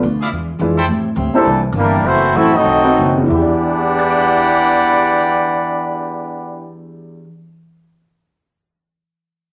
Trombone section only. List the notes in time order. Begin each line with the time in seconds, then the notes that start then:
1.35 A#2 E3 A3
1.75 E3 G3 A#3
2.05 E3 A3 C4
2.35 A3 C4 E4
2.54 F#3 A3 D#4
3.29 E3 B3 D4 G4